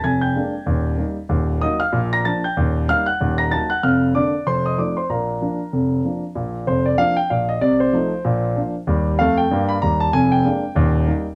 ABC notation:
X:1
M:4/4
L:1/8
Q:"Swing" 1/4=190
K:Bb
V:1 name="Grand piano"
[_a_a'] [gg']6 z | z2 [ee'] [ff']2 [bb'] [aa'] [gg'] | z2 [ff'] [_g_g']2 [bb'] [aa'] [gg'] | [ff']2 [dd']2 [cc'] [ee'] [dd'] [cc'] |
[Bb]6- [Bb] z | z2 c d f g f e | d c6 z | z2 f g2 _c' b a |
_a g6 z |]
V:2 name="Grand piano" clef=bass
[F,,,F,,]2 [_A,B,D]2 [E,,,E,,]2 [G,B,E]2 | [E,,,E,,]2 [_G,B,E]2 [B,,,B,,]2 [F,B,D]2 | [E,,,E,,]2 [G,B,E]2 [E,,,E,,]2 [_G,B,E]2 | [F,,,F,,]2 [D,B,D]2 [F,,,F,,]2 [F,A,E]2 |
[B,,,B,,]2 [F,B,D]2 [F,,,F,,]2 [F,B,D]2 | [B,,,B,,]2 [F,,,F,,]2 [F,B,D]2 [B,,,B,,]2 | [C,,C,]2 [F,A,E]2 [B,,,B,,]2 [F,B,D]2 | [E,,G,]2 [F,,A,]2 [G,,B,]2 [E,,G,]2 |
[F,,,F,,]2 [_A,B,D]2 [E,,,E,,]2 [G,B,E]2 |]